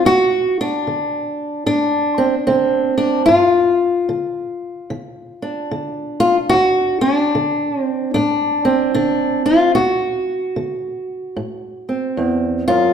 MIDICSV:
0, 0, Header, 1, 2, 480
1, 0, Start_track
1, 0, Tempo, 808625
1, 31, Time_signature, 4, 2, 24, 8
1, 7678, End_track
2, 0, Start_track
2, 0, Title_t, "Steel-string acoustic guitar"
2, 0, Program_c, 0, 25
2, 30, Note_on_c, 0, 38, 73
2, 37, Note_on_c, 0, 66, 116
2, 337, Note_off_c, 0, 66, 0
2, 360, Note_on_c, 0, 62, 85
2, 474, Note_off_c, 0, 38, 0
2, 518, Note_on_c, 0, 50, 56
2, 958, Note_off_c, 0, 50, 0
2, 980, Note_off_c, 0, 62, 0
2, 987, Note_on_c, 0, 45, 66
2, 989, Note_on_c, 0, 62, 92
2, 1293, Note_on_c, 0, 60, 74
2, 1388, Note_off_c, 0, 60, 0
2, 1432, Note_off_c, 0, 45, 0
2, 1465, Note_on_c, 0, 60, 83
2, 1473, Note_on_c, 0, 50, 66
2, 1759, Note_off_c, 0, 62, 0
2, 1766, Note_on_c, 0, 62, 80
2, 1915, Note_off_c, 0, 50, 0
2, 1931, Note_off_c, 0, 62, 0
2, 1933, Note_on_c, 0, 65, 108
2, 1946, Note_off_c, 0, 60, 0
2, 1950, Note_on_c, 0, 43, 88
2, 2393, Note_off_c, 0, 43, 0
2, 2426, Note_on_c, 0, 50, 67
2, 2871, Note_off_c, 0, 50, 0
2, 2910, Note_on_c, 0, 50, 67
2, 3220, Note_on_c, 0, 62, 54
2, 3353, Note_off_c, 0, 50, 0
2, 3392, Note_on_c, 0, 50, 66
2, 3673, Note_off_c, 0, 65, 0
2, 3680, Note_on_c, 0, 65, 109
2, 3775, Note_off_c, 0, 65, 0
2, 3834, Note_off_c, 0, 50, 0
2, 3855, Note_on_c, 0, 66, 120
2, 3879, Note_on_c, 0, 38, 90
2, 4160, Note_off_c, 0, 66, 0
2, 4163, Note_off_c, 0, 62, 0
2, 4163, Note_on_c, 0, 62, 95
2, 4318, Note_off_c, 0, 38, 0
2, 4362, Note_on_c, 0, 50, 66
2, 4644, Note_off_c, 0, 62, 0
2, 4644, Note_on_c, 0, 60, 95
2, 4799, Note_off_c, 0, 50, 0
2, 4823, Note_off_c, 0, 60, 0
2, 4833, Note_on_c, 0, 62, 89
2, 4842, Note_on_c, 0, 45, 70
2, 5134, Note_on_c, 0, 60, 80
2, 5279, Note_off_c, 0, 45, 0
2, 5302, Note_off_c, 0, 62, 0
2, 5309, Note_on_c, 0, 62, 83
2, 5314, Note_on_c, 0, 50, 64
2, 5611, Note_off_c, 0, 62, 0
2, 5613, Note_on_c, 0, 65, 90
2, 5755, Note_off_c, 0, 50, 0
2, 5785, Note_off_c, 0, 65, 0
2, 5787, Note_on_c, 0, 66, 100
2, 5789, Note_off_c, 0, 60, 0
2, 5797, Note_on_c, 0, 38, 82
2, 6237, Note_off_c, 0, 38, 0
2, 6270, Note_on_c, 0, 50, 62
2, 6714, Note_off_c, 0, 50, 0
2, 6746, Note_on_c, 0, 45, 61
2, 7056, Note_on_c, 0, 60, 46
2, 7192, Note_off_c, 0, 45, 0
2, 7226, Note_on_c, 0, 40, 62
2, 7522, Note_off_c, 0, 66, 0
2, 7525, Note_on_c, 0, 65, 102
2, 7529, Note_off_c, 0, 40, 0
2, 7531, Note_on_c, 0, 42, 62
2, 7678, Note_off_c, 0, 42, 0
2, 7678, Note_off_c, 0, 60, 0
2, 7678, Note_off_c, 0, 65, 0
2, 7678, End_track
0, 0, End_of_file